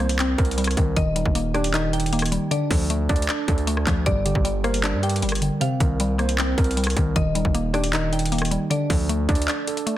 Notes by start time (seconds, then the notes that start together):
Already playing: C2 C3 D#3 G3 C4 A#4 F5
0.00 A#3 C5
0.09 closed hi-hat
0.19 C4, clap, closed hi-hat
0.38 C2 A#4, kick, closed hi-hat
0.45 closed hi-hat
0.51 closed hi-hat
0.57 G3, closed hi-hat
0.64 cross-stick, closed hi-hat
0.71 closed hi-hat
0.77 C2 D#3, kick, closed hi-hat
0.96 D#1 D#3 D#5, kick, closed hi-hat
1.16 G3 D#4, closed hi-hat
1.26 D#1, kick
1.35 A#3, closed hi-hat
1.54 D4 G4 D5, cross-stick, closed hi-hat
1.64 closed hi-hat
1.74 D#3 D#4 D#5, clap, closed hi-hat
1.93 D#4 G5, closed hi-hat
2.00 closed hi-hat
2.06 closed hi-hat
2.13 A#3, closed hi-hat
2.19 cross-stick, closed hi-hat
2.25 closed hi-hat
2.32 G3, closed hi-hat
2.51 D3 D4 D5, closed hi-hat
2.71 D2 F3 A4, kick, open hi-hat
2.90 A3, closed hi-hat
3.09 D2 D4 D5, kick, closed hi-hat
3.16 closed hi-hat
3.22 closed hi-hat
3.29 D4 D5, clap, closed hi-hat
3.48 D2 A4, kick, closed hi-hat
3.58 closed hi-hat
3.67 A3, closed hi-hat
3.77 cross-stick
3.86 D2 F3, kick, clap, closed hi-hat
4.06 G1 G2 G3 D5, kick, closed hi-hat
4.25 D3 G4, closed hi-hat
4.35 G1, kick
4.45 G3, closed hi-hat
4.64 A#3 A#4 C5, cross-stick, closed hi-hat
4.74 closed hi-hat
4.83 G3 D4 D5, clap, closed hi-hat
4.93 G2
5.03 G4 G5, closed hi-hat
5.09 closed hi-hat
5.16 closed hi-hat
5.22 G1 G3, closed hi-hat
5.29 cross-stick, closed hi-hat
5.35 closed hi-hat
5.41 D3, closed hi-hat
5.61 C3 C4 F5, closed hi-hat
5.80 C2 D#3 A#4, kick, closed hi-hat
6.00 G3, closed hi-hat
6.18 A#3 C5, cross-stick, closed hi-hat
6.29 closed hi-hat
6.38 C4, clap, closed hi-hat
6.57 C2 A#4, kick, closed hi-hat
6.64 closed hi-hat
6.71 closed hi-hat
6.77 G3, closed hi-hat
6.84 cross-stick, closed hi-hat
6.90 closed hi-hat
6.97 C2 D#3, kick, closed hi-hat
7.16 D#1 D#3 D#5, kick, closed hi-hat
7.35 G3 D#4, closed hi-hat
7.45 D#1, kick
7.54 A#3, closed hi-hat
7.73 D4 G4 D5, cross-stick, closed hi-hat
7.84 closed hi-hat
7.93 D#3 D#4 D#5, clap, closed hi-hat
8.13 D#4 G5, closed hi-hat
8.19 closed hi-hat
8.26 closed hi-hat
8.32 A#3, closed hi-hat
8.38 cross-stick, closed hi-hat
8.45 closed hi-hat
8.51 G3, closed hi-hat
8.70 D3 D4 D5, closed hi-hat
8.90 D2 F3 A4, kick, open hi-hat
9.09 A3, closed hi-hat
9.29 D2 D4 D5, kick, closed hi-hat
9.35 closed hi-hat
9.42 closed hi-hat
9.48 D4 D5, clap, closed hi-hat
9.67 A4, closed hi-hat
9.77 closed hi-hat
9.86 A3, closed hi-hat